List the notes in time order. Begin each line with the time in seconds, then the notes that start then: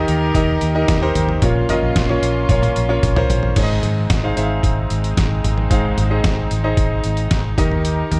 Already playing: D#3 D#4 G4 A#4 D#5 F5
0.08 D#2, closed hi-hat
0.35 D#2 D#4 G4 A#4 D#5, kick, closed hi-hat
0.61 D#2, closed hi-hat
0.75 D#4 G4 A#4 D#5
0.88 D#2, kick, snare, closed hi-hat
1.02 D#4 G4 A#4 C5
1.15 D#2, closed hi-hat, floor tom
1.29 floor tom
1.42 A#1 A#2 A#3 C#4 F4 A#4 C#5, kick, closed hi-hat
1.69 C#4 F4 A#4 D#5, closed hi-hat, floor tom
1.82 A#1
1.96 A#1, kick, snare, closed hi-hat
2.09 C#4 F4 A#4 C#5
2.22 A#1, closed hi-hat
2.49 A#1 C#4 F4 A#4 C#5, kick, closed hi-hat, high tom
2.63 closed hi-hat, high tom
2.76 A#1, closed hi-hat
2.89 C#4 F4 A#4 C#5
3.03 A#1, kick, closed hi-hat, mid tom
3.16 C#4 F4 A#4 C5, mid tom
3.30 A#1, closed hi-hat, floor tom
3.43 floor tom
3.56 G#1 G#2 G#3 C4 D#4 G#4 C5 C#5, kick, closed hi-hat, crash
3.63 D#5
3.83 G#1, closed hi-hat, floor tom
4.10 G#1, kick, snare, closed hi-hat
4.23 D#4 G#4 C5 F5
4.37 G#1 D#4 G#4 C5 E5, closed hi-hat
4.44 F5
4.63 G#1, kick, closed hi-hat
4.90 G#1, closed hi-hat
5.04 closed hi-hat
5.17 G#1, kick, snare, closed hi-hat
5.44 G#1, closed hi-hat, floor tom
5.58 floor tom
5.70 G#1 G#2 D#4 G#4 C5 F5, kick, closed hi-hat
5.98 G#1, closed hi-hat, floor tom
6.10 D#4 G#4 C5 D#5
6.24 G#1, kick, snare, closed hi-hat
6.51 G#1, closed hi-hat
6.64 D#4 G#4 C5 D#5
6.77 G#1, kick, closed hi-hat
7.04 G#1, closed hi-hat
7.17 closed hi-hat
7.31 kick, snare, closed hi-hat
7.57 D#2 D#3 D#4 G4 A#4 D#5, kick, closed hi-hat, floor tom
7.71 floor tom
7.85 closed hi-hat
8.11 D#2, closed hi-hat, floor tom